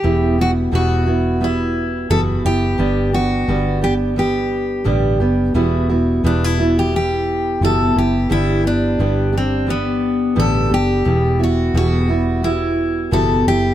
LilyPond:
<<
  \new Staff \with { instrumentName = "Steel-string acoustic guitar" } { \time 4/4 \key e \minor \tempo 4 = 87 g'8 fis'8 fis'4 e'4 a'8 g'8~ | g'8 fis'4 g'8 g'4. r8 | r4 d'16 e'8 g'16 g'4 a'8 g'8 | e'8 d'4 c'8 b4 a'8 g'8~ |
g'8 fis'8 fis'4 e'4 a'8 g'8 | }
  \new Staff \with { instrumentName = "Steel-string acoustic guitar" } { \time 4/4 \key e \minor <e, b, g b e'>8 <g b e' fis'>8 <e, b, g b e' fis'>8 <g b e' fis'>8 <g b e' fis'>4 <e, b, g b e' fis'>8 <g b e'>8 | <g, d g b d' g'>8 <g b d'>8 <g, d g b d'>8 <g b d' g'>8 <g b d' g'>4 <g, d g b d' g'>8 <g b d' g'>8 | <e, b, g b e' fis'>8 <g b e' fis'>8 <e, b, g b e' fis'>8 <g b e' fis'>8 <g b e'>4 <e, b, g b e' fis'>8 <g b e'>8 | <g, d g b d' g'>8 <g b d' g'>8 <g, d g b d' g'>8 <g d' g'>8 <g b d' g'>4 <g, d g b d' g'>8 <g b d' g'>8 |
<e, b, g b e'>8 <g b e' fis'>8 <e, b, g b e' fis'>8 <g b e' fis'>8 <g b e' fis'>4 <e, b, g b e' fis'>8 <g b e'>8 | }
  \new Staff \with { instrumentName = "Fingered electric bass" } { \clef bass \time 4/4 \key e \minor e,,4 e,,2 fis,,8 fis,,8 | g,,4 g,,2 a,,8 fis,,8 | e,,4 e,,2 fis,,8 fis,,8 | g,,4 g,,2 a,,8 fis,,8 |
e,,4 e,,2 fis,,8 fis,,8 | }
>>